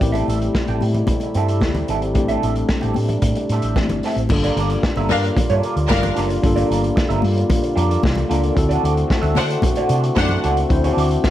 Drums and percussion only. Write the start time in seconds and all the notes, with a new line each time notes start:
0.01 kick, closed hi-hat
0.14 closed hi-hat, muted conga
0.28 closed hi-hat, high conga
0.42 closed hi-hat
0.55 kick, snare, muted conga
0.68 closed hi-hat
0.81 open hi-hat, high conga
0.94 closed hi-hat, low conga
1.07 kick, closed hi-hat, muted conga, high conga, low conga
1.20 closed hi-hat, muted conga
1.34 closed hi-hat
1.48 closed hi-hat
1.61 kick, snare, high conga
1.75 closed hi-hat, muted conga, low conga
1.88 closed hi-hat
2.02 closed hi-hat
2.15 kick, closed hi-hat
2.28 closed hi-hat, muted conga
2.42 closed hi-hat, high conga
2.56 closed hi-hat
2.69 kick, snare, muted conga
2.81 closed hi-hat, muted conga
2.94 open hi-hat, high conga
3.09 closed hi-hat, low conga
3.22 kick, closed hi-hat, high conga, low conga
3.35 closed hi-hat, muted conga
3.49 closed hi-hat
3.62 closed hi-hat
3.76 kick, snare, muted conga, high conga
3.89 closed hi-hat, muted conga, low conga
4.03 snare, open hi-hat
4.17 closed hi-hat
4.29 kick, crash, muted conga
4.43 closed hi-hat
4.57 closed hi-hat
4.70 closed hi-hat
4.83 kick, snare
4.96 closed hi-hat, muted conga
5.09 open hi-hat, high conga
5.24 closed hi-hat
5.37 kick, closed hi-hat, muted conga, high conga, low conga
5.50 closed hi-hat
5.63 closed hi-hat
5.77 closed hi-hat
5.90 kick, snare, muted conga, high conga
6.03 closed hi-hat, low conga
6.16 snare, closed hi-hat
6.30 closed hi-hat
6.43 kick, closed hi-hat
6.57 closed hi-hat, muted conga
6.71 closed hi-hat
6.84 closed hi-hat
6.97 kick, snare, muted conga
7.10 closed hi-hat
7.22 open hi-hat, high conga
7.37 closed hi-hat
7.50 kick, closed hi-hat, muted conga, high conga, low conga
7.63 closed hi-hat
7.77 closed hi-hat
7.91 closed hi-hat
8.03 kick, snare, muted conga, high conga
8.15 closed hi-hat, muted conga, low conga
8.31 closed hi-hat
8.43 closed hi-hat
8.57 kick, closed hi-hat
8.71 closed hi-hat
8.85 closed hi-hat
8.97 closed hi-hat
9.10 kick, snare
9.23 closed hi-hat, muted conga
9.35 open hi-hat, high conga
9.50 closed hi-hat
9.62 kick, closed hi-hat, muted conga, high conga, low conga
9.76 closed hi-hat, muted conga
9.89 closed hi-hat
10.04 closed hi-hat
10.16 kick, snare, high conga
10.29 closed hi-hat, muted conga, low conga
10.44 closed hi-hat
10.57 closed hi-hat
10.70 kick, closed hi-hat
10.84 closed hi-hat
10.98 closed hi-hat
11.11 closed hi-hat
11.24 kick, snare, muted conga